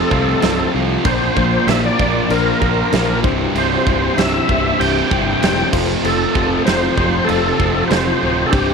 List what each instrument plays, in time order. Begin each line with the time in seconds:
Already playing: overdriven electric guitar F2 C3 F3, string machine A3 C4 F4 C5, reed electric piano F4 A4 C5, tonewheel organ A4
0.10 fingered electric bass C2, overdriven electric guitar F2 C3 F3, kick
0.42 fingered electric bass C1, overdriven electric guitar F2 C3 F3, reed electric piano F4 A4 C5, snare, crash
0.74 fingered electric bass C2, overdriven electric guitar F2 C3 F3
1.03 fingered electric bass A#1, overdriven electric guitar A#2 F3 A#3, string machine A#3 D4 F4 C5, reed electric piano D4 A#4 C5, tonewheel organ C5, kick, crash
1.36 fingered electric bass A#1, overdriven electric guitar A#2 F3 A#3, kick
1.66 fingered electric bass A#1, overdriven electric guitar A#2 F3 A#3, reed electric piano D4 A#4 C5, tonewheel organ E5, snare, crash
1.85 tonewheel organ D5
1.99 fingered electric bass A#1, overdriven electric guitar A#2 F3 A#3, kick
2.29 fingered electric bass A#1, overdriven electric guitar A#2 F3 A#3, reed electric piano D4 A#4 C5, tonewheel organ A#4, crash
2.61 fingered electric bass A#1, overdriven electric guitar A#2 F3 A#3, kick
2.92 fingered electric bass A#1, overdriven electric guitar A#2 F3 A#3, reed electric piano D4 A#4 C5, snare, crash
3.23 fingered electric bass C1, overdriven electric guitar C2 G2 C3, string machine G3 C4 E4 C5, reed electric piano E4 G4 C5, kick
3.55 fingered electric bass C1, overdriven electric guitar C2 G2 C3, tonewheel organ C5, crash
3.86 fingered electric bass C1, overdriven electric guitar C2 G2 C3, kick
4.17 fingered electric bass C1, overdriven electric guitar C2 G2 C3, reed electric piano E4 G4 C5, tonewheel organ E5, snare, crash
4.34 tonewheel organ E5
4.48 fingered electric bass C1, overdriven electric guitar C2 G2 C3, kick
4.79 fingered electric bass C1, overdriven electric guitar C2 G2 C3, reed electric piano E4 G4 C5, tonewheel organ G5, crash
5.10 fingered electric bass G1, overdriven electric guitar C2 G2 C3, kick
5.41 fingered electric bass E1, overdriven electric guitar C2 G2 C3, reed electric piano E4 G4 C5, snare, crash
5.71 fingered electric bass F1, overdriven electric guitar F2 C3 F3, string machine A3 C4 F4 C5, reed electric piano F4 A4 C5, kick, crash
6.03 fingered electric bass F1, overdriven electric guitar F2 C3 F3, tonewheel organ A4, crash
6.35 fingered electric bass F1, overdriven electric guitar F2 C3 F3, kick
6.65 fingered electric bass F1, overdriven electric guitar F2 C3 F3, reed electric piano F4 A4 C5, tonewheel organ C5, snare, crash
6.96 fingered electric bass F1, overdriven electric guitar F2 C3 F3, kick
7.25 overdriven electric guitar F2 C3 F3, reed electric piano F4 A4, tonewheel organ A4, crash
7.29 fingered electric bass F1, reed electric piano C5
7.58 fingered electric bass F1, overdriven electric guitar F2 C3 F3, kick
7.88 fingered electric bass F1, overdriven electric guitar F2 C3, reed electric piano F4 A4 C5, tonewheel organ C5, crash
7.92 overdriven electric guitar F3, snare
8.22 fingered electric bass D1, overdriven electric guitar F2 C3 F3
8.46 reed electric piano D4, tonewheel organ G4 A4
8.51 fingered electric bass C1, overdriven electric guitar C2 G2 C3, string machine G#3 D#4 F4 C#5, reed electric piano E4 C5, kick, crash